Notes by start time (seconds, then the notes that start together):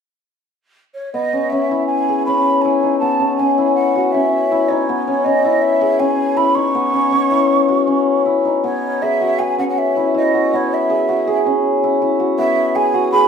0.94 C#5
1.13 B3 D#5
1.33 C#4
1.50 C#4 E5
1.71 E4
1.87 G#5
2.09 G#4
2.26 C#4 B5
2.62 E4 G#5
2.83 D#4
2.99 B3 A5
3.20 C#4
3.37 C#4 G#5
3.58 E4
3.75 F#5
3.95 F#4
4.12 C#4 E5
4.52 E4
4.69 D#4 C#5
4.89 B3
5.07 C#4
5.24 C#4 D#5
5.45 E4
5.62 E5
5.81 G#4
5.99 C#4 G#5
6.37 E4 B5
6.55 D#4 C#6
6.75 B3
6.93 C#4
7.12 C#4
7.31 E4
7.68 F#4
7.87 C#4
8.26 E4
8.45 D#4
8.64 B3 C#5
9.02 G#4 E5
9.21 F#4
9.39 G#4 G#5
9.58 C#4 F#5
9.70 F#5
9.78 E5
9.96 E4
10.14 E4 D#5
10.34 F#4
10.53 B3 C#5
10.74 E5
10.90 G#4
11.09 F#4
11.27 G#4
11.46 C#4
11.84 E4
12.02 E4
12.20 F#4
12.38 B3 E5
12.75 G#4 G#5
12.94 F#4
13.12 G#4 B5